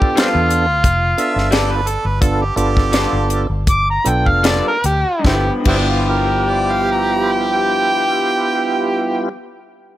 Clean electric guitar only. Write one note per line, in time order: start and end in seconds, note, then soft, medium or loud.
0.16 0.37 G3 medium
0.16 0.38 B3 medium
0.16 0.38 F4 medium
0.16 0.38 A4 medium
1.51 1.73 G3 medium
1.51 1.74 B3 medium
1.51 1.74 F4 medium
1.51 1.74 A4 loud
2.92 3.16 G3 medium
2.92 3.17 B3 loud
2.92 3.17 F4 medium
2.92 3.17 A4 medium
4.43 4.69 G3 medium
4.43 4.69 B3 medium
4.43 4.70 F4 medium
4.43 4.70 A4 medium
5.19 5.60 G2 medium
5.26 5.63 F3 medium
5.32 5.71 B3 medium
5.60 9.28 G2 medium
5.68 9.35 F3 medium
5.73 9.40 B3 medium